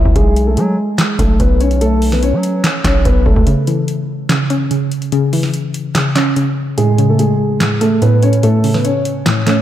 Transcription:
Already playing: grand piano E4 E5
0.05 808-style bass C#2, kick
0.16 808-style bass B1, grand piano G#3 G#4, kick, closed hi-hat
0.36 closed hi-hat
0.47 grand piano A3 A4
0.57 808-style bass F#3, grand piano G#3 G#4, closed hi-hat
0.98 snare, clap, closed hi-hat
1.19 808-style bass B1, grand piano A3 A4, kick, closed hi-hat
1.40 808-style bass B1, grand piano B3 B4, kick, closed hi-hat
1.60 grand piano C#4 C#5, closed hi-hat
1.71 closed hi-hat
1.81 grand piano A3 A4, closed hi-hat
2.02 open hi-hat
2.12 grand piano B3 B4, snare
2.23 grand piano C#4 C#5, closed hi-hat
2.33 808-style bass F#3
2.43 closed hi-hat
2.64 snare, clap, closed hi-hat
2.84 808-style bass B1, grand piano C#4 C#5, kick, snare, clap, closed hi-hat
3.05 808-style bass B1, grand piano B3 B4, kick, closed hi-hat
3.26 808-style bass B1, grand piano A3 A4, kick
3.36 808-style bass C#2, kick
3.47 synth pluck C#3, closed hi-hat
3.67 synth pluck E3, closed hi-hat
3.88 closed hi-hat
4.29 synth pluck C#3, snare, clap, closed hi-hat
4.50 synth pluck C#4, closed hi-hat
4.71 synth pluck C#3, closed hi-hat
4.92 closed hi-hat
5.02 closed hi-hat
5.12 synth pluck C#3, closed hi-hat
5.33 synth pluck E3, open hi-hat
5.43 snare
5.54 closed hi-hat
5.74 closed hi-hat
5.95 synth pluck C#3, snare, clap, closed hi-hat
6.16 synth pluck C#4, snare, clap, closed hi-hat
6.36 synth pluck C#3, closed hi-hat
6.78 synth pluck A2, grand piano G#3 G#4, closed hi-hat
6.98 synth pluck C#3, closed hi-hat
7.09 grand piano A3 A4
7.19 grand piano G#3 G#4, closed hi-hat
7.60 synth pluck A2, snare, clap, closed hi-hat
7.81 synth pluck A3, grand piano A3 A4, closed hi-hat
8.02 synth pluck A2, grand piano B3 B4, closed hi-hat
8.23 grand piano C#4 C#5, closed hi-hat
8.33 closed hi-hat
8.43 synth pluck A2, grand piano A3 A4, closed hi-hat
8.64 synth pluck C#3, open hi-hat
8.74 grand piano B3 B4, snare
8.84 grand piano C#4 C#5, closed hi-hat
9.05 closed hi-hat
9.26 synth pluck A2, snare, clap, closed hi-hat
9.47 synth pluck A3, grand piano C#4 C#5, snare, clap, closed hi-hat

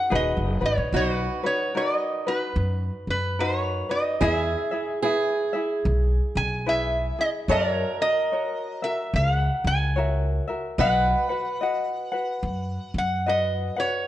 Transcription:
Already playing: ukulele D#4 F#4 B4, steel-string acoustic guitar F#4, resonator guitar played with a steel bar F#5
0.10 upright bass D#1, ukulele D#4 F#4 G#4 B4
0.15 resonator guitar played with a steel bar D#5
0.37 upright bass F#1
0.61 upright bass G#1, ukulele D#4 F#4 B4
0.66 resonator guitar played with a steel bar C#5
0.77 upright bass A#1
0.92 upright bass B1, ukulele D#4 F#4 B4, steel-string acoustic guitar F#4, resonator guitar played with a steel bar C5
1.15 resonator guitar played with a steel bar B4
1.43 ukulele D#4 F#4 B4, resonator guitar played with a steel bar C#5
1.75 ukulele D#4 F#4 A#4 B4, resonator guitar played with a steel bar D5
1.96 resonator guitar played with a steel bar D#5
2.27 ukulele D#4 F#4 B4, resonator guitar played with a steel bar B4
2.56 upright bass F#2
3.07 upright bass F#2, resonator guitar played with a steel bar B4
3.39 ukulele D#4 F#4 A#4 B4, resonator guitar played with a steel bar C5
3.59 resonator guitar played with a steel bar C#5
3.89 ukulele D#4 F#4 B4, resonator guitar played with a steel bar D#5
4.21 upright bass E2, ukulele E4 G#4 B4 E5, steel-string acoustic guitar G#4, resonator guitar played with a steel bar D#5
4.33 resonator guitar played with a steel bar E5
4.71 ukulele E4 G#4 E5
5.02 ukulele E4 G#4 B4 E5, steel-string acoustic guitar G#4
5.53 ukulele E4 G#4 E5
5.85 upright bass B1
6.35 upright bass B1, resonator guitar played with a steel bar G#5
6.66 ukulele E4 G#4 B4 E5, resonator guitar played with a steel bar E5
7.18 ukulele E4 G#4, resonator guitar played with a steel bar D#5
7.48 upright bass F#2, ukulele F#4 A#4 C#5 E5, steel-string acoustic guitar A#4, resonator guitar played with a steel bar D5
7.70 resonator guitar played with a steel bar C#5
8.01 ukulele F#4 A#4, resonator guitar played with a steel bar D#5
8.32 ukulele F#4 A#4 C#5
8.82 ukulele F#4 A#4 E5, resonator guitar played with a steel bar E5
9.14 upright bass C#2, resonator guitar played with a steel bar F5
9.35 resonator guitar played with a steel bar F#5
9.64 upright bass C#2, resonator guitar played with a steel bar G#5
9.96 ukulele F#4 A#4 C#5 E5
10.48 ukulele F#4 A#4 E5
10.78 upright bass B1, ukulele F#4 B4 D#5 F#5, steel-string acoustic guitar B4, resonator guitar played with a steel bar F#5
11.29 ukulele F#4 B4 F#5
11.61 ukulele F#4 B4 D#5 F#5
12.12 ukulele F#4 B4 F#5
12.43 upright bass F#2
12.94 upright bass F#2
12.98 resonator guitar played with a steel bar F#5
13.26 ukulele F#4 B4 D#5 F#5, resonator guitar played with a steel bar D#5
13.76 ukulele F#4 B4 F#5, resonator guitar played with a steel bar C#5

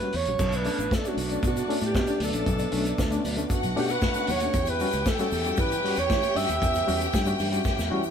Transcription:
Already playing: french horn section E3 B3 C#4 F#4 G4, alto saxophone B4
0.00 reed electric piano G3 C#4 F#4, closed hi-hat
0.12 fingered electric bass E2, reed electric piano E3, alto saxophone C#5, open hi-hat
0.25 fingered electric bass A#1, reed electric piano G3 C#4 F#4, closed hi-hat
0.38 fingered electric bass B1, reed electric piano B2 F#3, french horn section A3 B3 D4, string section D4 D5, kick, crash, shaker
0.52 alto saxophone B4, closed hi-hat, shaker
0.64 reed electric piano A3 C#4 D4, open hi-hat, shaker
0.78 fingered electric bass A1, reed electric piano C#4 D4, closed hi-hat, shaker
0.91 alto saxophone A4, kick, snare, shaker
1.05 reed electric piano A3 C#4 D4, alto saxophone F#4, closed hi-hat, shaker
1.17 fingered electric bass B1, reed electric piano B2 F#3, open hi-hat, shaker
1.29 reed electric piano A3 C#4 D4, closed hi-hat, shaker
1.43 fingered electric bass B2, kick, closed hi-hat, shaker
1.47 alto saxophone F#4
1.57 closed hi-hat, shaker
1.69 reed electric piano A3 C#4 D4, open hi-hat
1.80 fingered electric bass A2, closed hi-hat, shaker
1.86 alto saxophone G4
1.95 fingered electric bass B2, kick, snare, shaker
2.07 reed electric piano A3 C#4 D4, closed hi-hat, shaker
2.20 fingered electric bass D2, reed electric piano B2 F#3, open hi-hat, shaker
2.25 alto saxophone A4
2.33 fingered electric bass A#1, reed electric piano A3 C#4 D4, closed hi-hat, shaker
2.46 fingered electric bass B1, reed electric piano B2 F#3, kick, closed hi-hat, shaker
2.59 closed hi-hat, shaker
2.72 fingered electric bass B1, reed electric piano A3 C#4 D4, open hi-hat, shaker
2.85 reed electric piano C#4 D4, closed hi-hat, shaker
2.98 fingered electric bass D2, kick, snare, shaker
3.11 reed electric piano A3 C#4 D4, closed hi-hat, shaker
3.24 fingered electric bass D2, reed electric piano B2 F#3, open hi-hat, shaker
3.36 reed electric piano A3 C#4 D4, closed hi-hat, shaker
3.50 string section F#4 F#5, kick, closed hi-hat, shaker
3.63 fingered electric bass B1, closed hi-hat, shaker
3.76 fingered electric bass B2, reed electric piano A3 C#4 D4, alto saxophone G4, open hi-hat
3.88 alto saxophone B4, closed hi-hat, shaker
4.02 kick, snare, shaker
4.14 reed electric piano A3 C#4 D4, closed hi-hat, shaker
4.27 fingered electric bass D#2, reed electric piano B2 F#3, alto saxophone C#5, open hi-hat, shaker
4.40 reed electric piano A3 C#4 D4, closed hi-hat, shaker
4.53 fingered electric bass E2, french horn section E3 B3 C#4 E4 G4, reed electric piano E3, string section G4 G5, kick, closed hi-hat, shaker
4.66 alto saxophone B4, closed hi-hat, shaker
4.80 reed electric piano G3 C#4 F#4, open hi-hat, shaker
4.92 fingered electric bass C#2, reed electric piano F#4, closed hi-hat, shaker
5.06 alto saxophone A4, kick, snare, shaker
5.19 reed electric piano G3 C#4 F#4, alto saxophone A4, closed hi-hat, shaker
5.32 fingered electric bass E2, reed electric piano E3, open hi-hat, shaker
5.44 reed electric piano G3 C#4 F#4, closed hi-hat, shaker
5.57 fingered electric bass E3, alto saxophone B4, kick, closed hi-hat, shaker
5.71 closed hi-hat, shaker
5.84 reed electric piano G3 C#4 F#4, open hi-hat
5.96 fingered electric bass E2, alto saxophone C#5, closed hi-hat, shaker
6.10 fingered electric bass E3, kick, snare, shaker
6.23 closed hi-hat, shaker
6.35 fingered electric bass G2, reed electric piano G3 C#4 F#4, alto saxophone E5, open hi-hat, shaker
6.49 fingered electric bass D#2, closed hi-hat, shaker
6.62 fingered electric bass E2, reed electric piano E3, kick, closed hi-hat, shaker
6.74 closed hi-hat, shaker
6.87 fingered electric bass E2, reed electric piano G3 C#4 F#4, open hi-hat, shaker
7.01 reed electric piano C#4 F#4, closed hi-hat, shaker
7.14 fingered electric bass G2, kick, snare, shaker
7.26 reed electric piano G3 C#4 F#4, closed hi-hat, shaker
7.39 fingered electric bass G2, reed electric piano E3, open hi-hat, shaker
7.52 reed electric piano G3 C#4 F#4, closed hi-hat, shaker
7.64 kick, snare, shaker
7.79 fingered electric bass E2, snare, shaker
7.90 fingered electric bass E3, reed electric piano G3 C#4 F#4
8.03 shaker

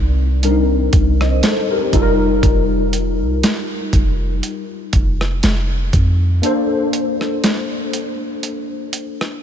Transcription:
Already playing: 808-style bass C2, tine electric piano G3 C4 D#4 A#4
0.43 tine electric piano G3 C4 D4 A#4, closed hi-hat
0.51 tine electric piano D#4
0.93 808-style bass C2, kick, closed hi-hat
1.21 tine electric piano C5 D#5, cross-stick
1.43 tine electric piano A4 C5, snare, closed hi-hat
1.71 tine electric piano G4 A#4
1.92 808-style bass F1, tine electric piano G3 D#4 F4 A4, kick, closed hi-hat
2.02 tine electric piano A#4
2.43 808-style bass F1, kick, closed hi-hat
2.93 closed hi-hat
3.21 808-style bass C2
3.43 snare, closed hi-hat
3.93 808-style bass F1, kick, closed hi-hat
4.43 closed hi-hat
4.93 808-style bass F1, kick, closed hi-hat
5.21 cross-stick
5.43 808-style bass F1, snare, closed hi-hat
5.93 808-style bass F2, kick, closed hi-hat
6.42 tine electric piano A#3 D4 A4 C5, closed hi-hat
6.93 closed hi-hat
7.21 cross-stick
7.44 snare, closed hi-hat
7.93 closed hi-hat
8.43 closed hi-hat
8.93 closed hi-hat
9.21 cross-stick

